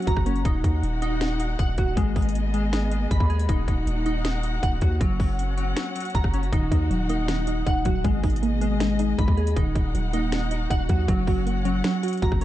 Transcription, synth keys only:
0.00 0.45 F#3 medium
0.07 0.45 A#5 loud
0.26 0.45 C#4 medium
0.45 0.63 D#4 medium
0.64 1.01 D#4 medium
1.02 1.20 D#4 loud
1.21 1.39 D#4 medium
1.40 1.97 D#4 medium
1.59 1.97 F#5 medium
1.78 1.97 F#4 medium
1.97 2.15 G#3 medium
2.16 2.53 G#3 medium
2.54 2.72 G#3 medium
2.73 2.91 G#3 medium
2.92 3.49 G#3 medium
3.11 3.49 B5 loud
3.30 3.49 G#4 medium
3.49 3.67 D#4 medium
3.68 4.05 D#4 medium
4.06 4.24 D#4 medium
4.25 4.43 D#4 medium
4.44 5.01 D#4 medium
4.63 5.01 F#5 loud
4.82 5.01 F#4 medium
5.00 5.18 F#3 medium
5.20 5.56 F#3 medium
5.57 5.76 F#3 medium
5.77 5.94 F#3 medium
5.96 6.53 F#3 medium
6.15 6.53 A#5 loud
6.34 6.53 C#4 medium
6.53 6.70 D#4 medium
6.72 7.08 D#4 medium
7.10 7.28 D#4 medium
7.29 7.46 D#4 medium
7.47 8.04 D#4 medium
7.66 8.04 F#5 medium
7.86 8.05 F#4 medium
8.04 8.22 G#3 medium
8.24 8.60 G#3 medium
8.61 8.79 G#3 loud
8.81 8.98 G#3 medium
9.00 9.56 G#3 medium
9.19 9.56 B5 loud
9.37 9.56 G#4 medium
9.56 9.74 D#4 medium
9.75 10.12 D#4 medium
10.14 10.31 D#4 loud
10.32 10.50 D#4 medium
10.51 11.08 D#4 medium
10.70 11.08 F#5 loud
10.89 11.08 F#4 medium
11.08 11.26 F#3 medium
11.27 11.64 F#3 medium
11.65 11.83 F#3 loud
11.84 12.02 F#3 medium
12.03 12.45 F#3 medium
12.23 12.45 A#5 loud
12.41 12.45 C#4 medium

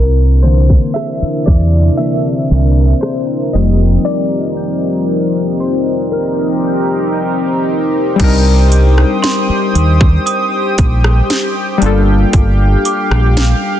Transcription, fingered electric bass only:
0.00 0.75 C2 loud
1.22 muted fingered electric bass stroke soft
1.48 1.89 E2 loud
2.51 2.93 C2 medium
3.55 3.96 F1 medium
8.20 9.03 C2 loud
9.49 muted fingered electric bass stroke medium
9.75 10.17 D#2 medium
10.79 11.20 A#1 medium
11.82 12.24 G1 loud
12.33 12.75 G1 loud
13.11 13.53 A#1 loud

